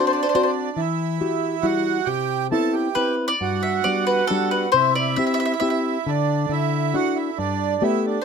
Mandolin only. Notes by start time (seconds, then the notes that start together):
0.07 C5
0.13 C5
0.23 C5
0.29 C5
0.35 C5
0.43 C5
2.95 B4
3.28 D5
3.63 E5
3.84 D5
4.07 B4
4.27 A4
4.51 B4
4.72 C5
4.95 D5
5.16 E5
5.27 E5
5.34 E5
5.40 E5
5.45 E5
5.54 E5
5.60 E5
5.70 E5
8.21 C5